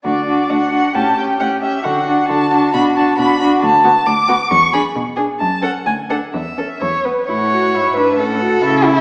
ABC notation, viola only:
X:1
M:2/4
L:1/8
Q:1/4=134
K:D
V:1 name="Viola"
D D D D | C C C C | D D D D | D D D D |
[K:A] z B, z B, | z D z D | z C z D | z C z B, |
E F E D | C F E2 |]